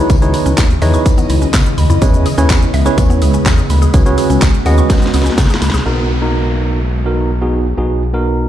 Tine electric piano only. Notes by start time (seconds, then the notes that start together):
Already playing: D#4 E4 G#4 B4 C#5
0.22 D#4 E4 G#4 B4 C#5
0.82 D#4 E4 G#4 B4 C#5
2.02 C#4 E4 G#4 B4 C#5
2.38 C#4 E4 G#4 B4 C#5
2.86 C#4 E4 G#4 B4 C#5
3.94 C#4 F#4 G#4 B4 C#5
4.06 C#4 F#4 G#4 B4 C#5
4.66 C#4 F#4 G#4 B4 D#5
5.85 B3 D#4 F#4 A#4
6.21 B3 D#4 F#4 A#4
7.05 B3 D#4 F#4 A#4
7.42 B3 D#4 F#4 G#4
7.78 B3 D#4 F#4 G#4
8.14 B3 D#4 F#4 A#4